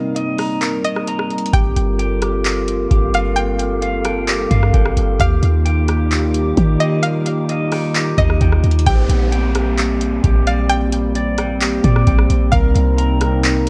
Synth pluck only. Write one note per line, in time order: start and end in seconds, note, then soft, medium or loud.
0.00 0.13 F5 loud
0.85 1.49 D#5 medium
1.53 1.96 G5 loud
3.14 3.36 F5 medium
3.36 3.79 G5 loud
5.21 5.63 F5 loud
6.80 7.02 D#5 medium
7.03 7.46 F5 loud
8.18 8.82 D#5 medium
8.86 9.29 G5 loud
10.47 10.68 F5 medium
10.69 11.12 G5 loud
12.52 12.95 F5 medium